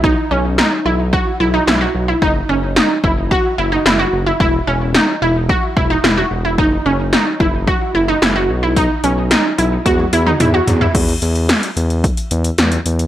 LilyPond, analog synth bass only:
\new Staff \with { instrumentName = "Analog synth bass" } { \clef bass \time 4/4 \key e \lydian \tempo 4 = 110 b,,8 b,,8. r16 b,,8. r16 b,,8 b,,8 b,,8 | fis,,8 fis,,8. r16 fis,,8. r16 fis,,8 fis,,8 fis,,8 | e,,8 e,,8. r16 e,,8. r16 e,,8 e,,8 e,,8 | fis,,8 fis,,8. r16 fis,,8. r16 fis,,8 fis,,8 b,,8~ |
b,,8 b,,8. r16 b,,8 e,8 e,8 e,8 e,8 | e,8 e,8. r16 e,8. r16 e,8 e,8 e,8 | }